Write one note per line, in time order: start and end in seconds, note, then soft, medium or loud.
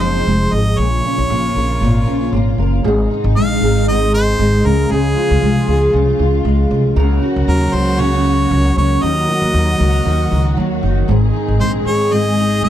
0.00 0.23 F#1 medium
0.00 0.76 C3 medium
0.00 2.80 F3 medium
0.00 3.14 F3 medium
0.00 0.26 G#3 medium
0.00 0.76 G#3 medium
0.00 0.84 C4 medium
0.00 0.76 D#4 medium
0.00 0.52 G#4 medium
0.00 0.54 C5 loud
0.27 0.48 F1 medium
0.27 0.84 G#3 medium
0.52 0.74 G#1 loud
0.52 0.84 G#4 medium
0.52 0.80 D#5 loud
0.78 0.99 A#1 loud
0.78 1.81 A#2 medium
0.78 2.83 C#3 medium
0.78 2.82 A#3 medium
0.78 2.82 F4 medium
0.78 2.33 C#5 loud
1.05 2.06 C#4 medium
1.18 1.28 A#1 loud
1.30 1.51 A#1 loud
1.30 2.33 A#3 medium
1.56 1.77 A#1 medium
1.56 2.58 A#4 medium
1.81 2.02 G#1 loud
1.81 2.84 A#2 medium
2.07 2.28 A#1 medium
2.07 2.90 C#4 medium
2.33 2.54 G#1 loud
2.33 2.91 A#3 medium
2.58 2.80 F#1 medium
2.58 2.85 A#4 medium
2.84 3.06 G#1 loud
2.84 3.87 G#2 medium
2.84 4.63 C3 medium
2.84 4.63 D#3 medium
2.84 6.92 G#3 medium
2.84 4.63 D#4 medium
2.84 3.62 G#4 medium
3.11 4.12 D#4 medium
3.24 3.34 G#1 loud
3.36 3.57 A#1 medium
3.36 4.38 G#3 medium
3.36 3.84 F5 loud
3.62 4.35 G#1 medium
3.62 4.90 G#4 medium
3.88 4.71 G#2 medium
3.88 4.12 D#5 loud
4.13 4.70 D#4 medium
4.13 4.67 C5 loud
4.39 4.60 G#1 medium
4.39 5.41 G#3 medium
4.64 4.86 C#2 loud
4.64 4.89 C#3 medium
4.64 6.94 C#3 medium
4.64 6.94 F3 medium
4.64 6.94 F4 medium
4.64 4.93 A#4 medium
4.90 5.12 C#2 loud
4.90 5.92 C#3 medium
4.90 5.66 G#4 medium
4.90 5.94 G#4 medium
5.15 6.18 F4 medium
5.31 5.40 C#2 loud
5.41 5.63 C2 loud
5.41 6.44 G#3 medium
5.67 5.89 C#2 loud
5.67 6.96 G#4 medium
5.93 6.15 C2 medium
5.93 6.95 C#3 medium
6.19 6.40 C#2 medium
6.19 7.02 F4 medium
6.45 6.66 C#2 loud
6.45 7.02 G#3 medium
6.71 6.92 C2 loud
6.71 8.76 C#4 medium
6.96 7.18 C#2 loud
6.96 7.98 C#3 medium
6.96 9.00 C#3 medium
6.96 9.01 F#3 medium
6.96 11.05 A#3 medium
6.96 9.01 F#4 loud
6.96 7.73 A#4 medium
7.22 8.24 F#4 medium
7.36 7.46 C#2 loud
7.48 7.69 D#2 loud
7.48 8.50 F#3 medium
7.48 7.76 A#4 medium
7.73 8.47 C#2 medium
7.73 9.03 A#4 medium
7.73 8.02 C5 medium
7.99 9.02 C#3 medium
7.99 8.77 C#5 loud
8.24 9.28 F#4 medium
8.50 8.72 C#2 loud
8.50 9.54 F#3 medium
8.77 8.98 C#2 medium
8.77 9.08 C#4 medium
8.77 9.04 C#5 loud
9.02 9.24 D#2 loud
9.02 12.69 D#3 medium
9.02 10.05 D#3 medium
9.02 11.06 F#3 medium
9.02 11.06 F#4 medium
9.02 9.78 A#4 medium
9.02 10.57 D#5 loud
9.29 10.30 F#4 medium
9.42 9.52 D#2 loud
9.54 9.75 D#2 loud
9.54 10.56 F#3 medium
9.79 10.01 C#2 medium
9.79 11.08 A#4 medium
10.05 10.27 D#2 loud
10.05 11.14 D#3 medium
10.32 10.53 C#2 medium
10.32 11.14 F#4 medium
10.57 10.78 D#2 medium
10.57 11.14 F#3 medium
10.83 11.04 F#1 medium
10.83 11.14 D#4 medium
11.07 11.30 G#1 loud
11.07 12.11 G#2 medium
11.07 12.69 G#3 medium
11.07 12.69 C4 medium
11.07 12.69 G#4 medium
11.07 11.86 G#4 medium
11.33 12.36 D#4 medium
11.48 11.58 G#1 loud
11.60 11.81 A#1 medium
11.60 12.63 G#3 medium
11.60 11.72 C5 medium
11.85 12.59 G#1 medium
11.85 12.69 G#4 medium
11.85 12.14 C#5 loud
12.12 12.69 G#2 medium
12.12 12.63 D#5 loud
12.37 12.69 D#4 medium
12.63 12.69 G#1 medium
12.63 12.69 G#3 medium
12.63 12.69 F5 loud